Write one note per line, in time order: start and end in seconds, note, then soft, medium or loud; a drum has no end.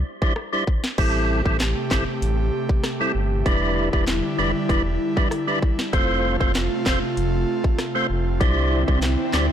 0.22 0.33 G3 medium
0.22 0.33 D4 medium
0.22 0.34 E4 medium
0.22 0.34 C5 medium
0.22 kick medium
0.36 cross-stick medium
0.53 0.64 G3 medium
0.53 0.64 D4 medium
0.53 0.65 E4 medium
0.53 0.65 C5 medium
0.67 kick medium
0.84 snare medium
0.98 1.42 A1 loud
0.98 3.43 C3 medium
0.98 1.42 G3 medium
0.98 3.43 A3 medium
0.98 1.42 C4 medium
0.98 1.42 E4 medium
0.98 3.43 G4 medium
0.98 1.42 A4 loud
0.98 kick loud
0.98 closed hi-hat medium
0.98 crash loud
1.45 1.74 A1 loud
1.45 1.57 G3 medium
1.45 1.57 C4 medium
1.45 1.57 E4 medium
1.45 1.57 A4 medium
1.45 kick medium
1.60 snare loud
1.60 clap medium
1.60 closed hi-hat medium
1.91 2.06 G1 medium
1.91 2.04 G3 medium
1.91 2.04 C4 medium
1.91 2.04 E4 medium
1.91 2.04 A4 medium
1.91 kick loud
1.91 snare loud
1.91 clap loud
2.22 2.50 A1 loud
2.22 closed hi-hat medium
2.69 kick medium
2.84 cross-stick medium
2.84 snare medium
2.84 closed hi-hat medium
3.00 3.12 G3 medium
3.00 3.12 C4 medium
3.00 3.12 E4 medium
3.00 3.12 A4 medium
3.15 3.43 G1 medium
3.45 3.89 E1 loud
3.45 5.91 D3 medium
3.45 5.91 G3 medium
3.45 3.89 G3 medium
3.45 3.89 D4 medium
3.45 5.91 E4 medium
3.45 3.89 E4 medium
3.45 3.89 B4 loud
3.45 kick loud
3.45 closed hi-hat medium
3.93 4.22 E1 loud
3.93 4.05 G3 medium
3.93 4.05 D4 medium
3.93 4.05 E4 medium
3.93 4.05 B4 medium
3.93 kick medium
4.07 snare loud
4.07 clap medium
4.07 closed hi-hat medium
4.38 4.54 F1 medium
4.38 4.52 G3 medium
4.38 4.52 D4 medium
4.38 4.52 E4 medium
4.38 4.52 B4 medium
4.69 4.98 E1 loud
4.69 4.82 G3 medium
4.69 4.83 D4 medium
4.69 4.83 E4 medium
4.69 4.83 B4 loud
4.69 kick medium
4.69 closed hi-hat medium
5.17 5.28 G3 medium
5.17 5.28 D4 medium
5.17 5.29 E4 medium
5.17 5.29 B4 medium
5.17 kick medium
5.31 cross-stick loud
5.31 closed hi-hat medium
5.47 5.59 G3 medium
5.47 5.59 D4 medium
5.47 5.59 E4 medium
5.47 5.59 B4 medium
5.62 kick medium
5.79 snare medium
5.93 6.37 F1 loud
5.93 8.38 C3 medium
5.93 6.36 A3 medium
5.93 8.38 A3 medium
5.93 6.36 C4 medium
5.93 6.37 F4 medium
5.93 8.38 F4 medium
5.93 6.37 C5 loud
5.93 kick loud
5.93 closed hi-hat medium
5.93 swell medium
6.40 6.69 F1 loud
6.40 6.52 A3 medium
6.40 6.52 C4 medium
6.40 6.52 F4 medium
6.40 6.52 C5 medium
6.40 kick medium
6.55 snare loud
6.55 clap medium
6.55 closed hi-hat medium
6.86 7.01 E1 medium
6.86 6.99 A3 medium
6.86 6.99 C4 medium
6.86 6.99 F4 medium
6.86 6.99 C5 medium
6.86 kick loud
6.86 snare loud
6.86 clap loud
7.17 7.45 F1 loud
7.17 closed hi-hat medium
7.64 kick medium
7.79 cross-stick medium
7.79 snare medium
7.79 closed hi-hat medium
7.95 8.07 A3 medium
7.95 8.07 C4 medium
7.95 8.07 F4 medium
7.95 8.07 C5 medium
8.10 8.42 F1 medium
8.40 8.84 C2 loud
8.40 9.52 D3 medium
8.40 8.84 G3 medium
8.40 9.52 C4 medium
8.40 8.84 D4 medium
8.40 9.52 E4 medium
8.40 8.84 E4 medium
8.40 8.84 C5 loud
8.40 kick loud
8.40 closed hi-hat medium
8.88 9.16 C2 medium
8.88 8.99 G3 medium
8.88 8.99 D4 medium
8.88 9.00 E4 medium
8.88 9.00 C5 medium
8.88 kick medium
9.02 snare loud
9.02 clap medium
9.02 closed hi-hat medium
9.33 9.49 D2 medium
9.33 9.46 G3 medium
9.33 9.46 D4 medium
9.33 9.47 E4 medium
9.33 9.47 C5 medium
9.33 snare loud
9.33 clap loud